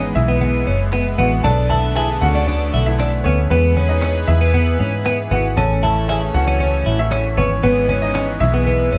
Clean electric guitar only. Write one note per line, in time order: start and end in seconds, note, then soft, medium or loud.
0.28 0.40 B3 medium
0.41 0.66 B3 medium
0.67 0.79 C#4 medium
0.93 1.05 B3 medium
1.18 1.31 B3 medium
1.44 1.69 D4 medium
1.70 1.95 E4 medium
1.96 2.09 E4 medium
2.35 2.47 D4 medium
2.48 2.72 D4 medium
2.74 2.86 E4 medium
3.00 3.12 D4 medium
3.26 3.38 B3 medium
3.51 3.76 B3 loud
3.77 4.01 C#4 medium
4.02 4.15 C#4 medium
4.41 4.53 B3 medium
4.54 4.79 B3 medium
4.80 4.92 C#4 medium
5.06 5.18 B3 medium
5.32 5.44 B3 medium
5.57 5.82 C#4 medium
5.83 6.07 E4 medium
6.09 6.21 E4 medium
6.48 6.59 C#4 medium
6.60 6.85 C#4 medium
6.86 6.98 E4 medium
7.11 7.24 C#4 medium
7.37 7.50 B3 medium
7.63 7.88 B3 loud
7.89 8.14 C#4 medium
8.15 8.27 C#4 medium
8.54 8.66 B3 medium
8.67 8.91 B3 medium
8.92 8.98 C#4 medium